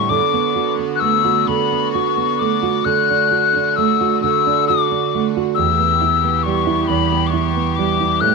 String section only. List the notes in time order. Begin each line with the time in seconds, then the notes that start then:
Already playing: D3
0.11 B3 F#4
2.87 D3 A3
5.56 E3 B3 G4
8.21 C#3 A3